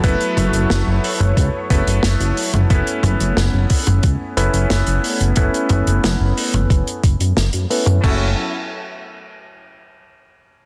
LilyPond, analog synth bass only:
\new Staff \with { instrumentName = "Analog synth bass" } { \clef bass \time 4/4 \key a \major \tempo 4 = 90 fis,,16 r16 fis,,16 fis,,16 fis,,16 fis,,16 r16 fis,,16 cis,16 r16 fis,,16 fis,,16 fis,,16 fis,,16 r16 fis,,16 | fis,,16 r16 fis,,16 fis,,16 fis,,16 fis,,16 r16 fis,,16 cis,16 r16 fis,,16 fis,,16 fis,,16 fis,,16 r16 fis,,16 | fis,,16 r16 fis,,16 fis,,16 fis,,16 fis,,16 r16 fis,,16 fis,,16 r16 fis,,16 fis,16 fis,,16 fis,16 r16 fis,16 | fis,,8 r2. r8 | }